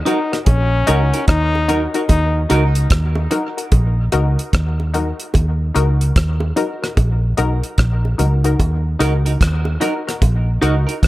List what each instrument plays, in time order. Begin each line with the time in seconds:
0.05 clean electric guitar D#4 F#4 A#4, synth stab D#4 F#4 A#4, trombone D#4, closed hi-hat, low bongo
0.32 synth stab F#4 A#4, cross-stick, closed hi-hat
0.46 fingered electric bass A#1, trombone C#4, kick, closed hi-hat, high bongo
0.87 fingered electric bass C#2, synth stab D#4 F#4 A#4, clean electric guitar D#4 F#4 A#4, closed hi-hat, high bongo
1.14 clean electric guitar D#4 F#4 A#4, closed hi-hat
1.28 fingered electric bass D#2, trombone D#4, kick, cross-stick, closed hi-hat
1.55 high bongo
1.68 synth stab D#4 F#4 A#4, clean electric guitar D#4 F#4 A#4, closed hi-hat, low bongo
1.94 synth stab D#4 F#4 A#4, clean electric guitar D#4 F#4 A#4, closed hi-hat
2.09 fingered electric bass D#2, trombone D#4, kick, closed hi-hat, high bongo
2.50 fingered electric bass C#2, synth stab D#4 F#4 A#4, clean electric guitar D#4 F#4 A#4, closed hi-hat, high bongo
2.75 closed hi-hat
2.90 fingered electric bass D#2, kick, cross-stick, closed hi-hat
3.15 high bongo
3.31 synth stab D#4 F#4 A#4, closed hi-hat, low bongo
3.57 synth stab F#4 A#4, closed hi-hat
3.72 fingered electric bass A#1, kick, closed hi-hat, high bongo
4.12 fingered electric bass C#2, synth stab D#4 F#4 A#4, closed hi-hat, high bongo
4.39 closed hi-hat
4.53 fingered electric bass D#2, kick, cross-stick, closed hi-hat
4.80 high bongo
4.94 synth stab D#4 F#4 A#4, closed hi-hat, low bongo
5.20 closed hi-hat
5.34 fingered electric bass D#2, kick, closed hi-hat, high bongo
5.74 fingered electric bass C#2, synth stab D#4 F#4 A#4, closed hi-hat, high bongo
6.01 closed hi-hat
6.16 fingered electric bass D#2, kick, cross-stick, closed hi-hat
6.40 high bongo
6.56 synth stab D#4 F#4 A#4, closed hi-hat, low bongo
6.82 synth stab F#4 A#4, cross-stick, closed hi-hat
6.97 fingered electric bass A#1, kick, closed hi-hat, high bongo
7.37 fingered electric bass B1, synth stab D#4 F#4 A#4, closed hi-hat, high bongo
7.63 closed hi-hat
7.78 fingered electric bass A#1, kick, cross-stick, closed hi-hat
8.05 high bongo
8.18 fingered electric bass C#2, synth stab D#4 F#4 A#4, closed hi-hat, low bongo
8.44 synth stab D#4 F#4 A#4, closed hi-hat
8.60 fingered electric bass D#2, kick, closed hi-hat, high bongo
8.99 fingered electric bass C#2, synth stab D#4 F#4 A#4, clean electric guitar D#4 F#4 A#4, closed hi-hat, high bongo
9.26 clean electric guitar D#4 F#4 A#4, closed hi-hat
9.41 fingered electric bass D#2, kick, cross-stick, closed hi-hat
9.65 high bongo
9.80 clean electric guitar D#4 F#4 A#4, synth stab D#4 F#4 A#4, closed hi-hat, low bongo
10.07 synth stab F#4 A#4, cross-stick, closed hi-hat
10.22 fingered electric bass A#1, kick, closed hi-hat, high bongo
10.61 fingered electric bass C#2, clean electric guitar D#4 F#4 A#4, synth stab D#4 F#4 A#4, closed hi-hat, high bongo
10.87 clean electric guitar D#4 F#4 A#4, closed hi-hat
11.03 fingered electric bass D#2, kick, cross-stick, closed hi-hat